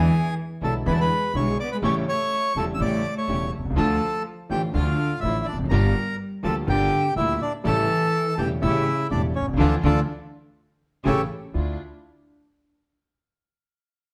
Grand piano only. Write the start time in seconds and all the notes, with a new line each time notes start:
0.62 B1 B2 D3 G#3 B3 E4
0.86 E2 D3 E3 G#3 B3 E4
1.34 B1 B2 D3 G#3 B3 E4
1.82 A1 A2 C#3 G3 A3 E4
2.55 E1 E2 C#3 G3 A3 E4
2.80 A1 A2 C#3 G3 A3 E4
3.28 E1 E2 C#3 G3 A3 E4
3.58 B1
3.65 C2
3.70 C#2
3.76 D2 D3 F3 A3 F4
4.49 A1 A2 D3 F3 A3 F4
4.74 D2 D3 F3 A3 F4
5.22 A1 A2 D3 F3 A3 F4
5.53 E2
5.58 F2
5.64 F#2
5.71 G1 G2 D3 G3 A#3 F4
6.43 D2 D3 G3 A#3 F4
6.67 G1 G2 D3 G3 A#3 F4
7.16 D2 D3 G3 A#3 F4
7.64 A1 A2 C#3 G3 A3 E4
8.38 E1 E2 C#3 G3 A3 E4
8.62 A1 A2 C#3 G3 A3 E4
9.10 E1 E2 C#3 G3 A3 E4
9.41 B1
9.48 C2
9.54 C#2
9.59 D3 E3 F3
9.84 D3 E3 F3
11.06 A2 C#3 E3
11.54 D2 D4 E4 F4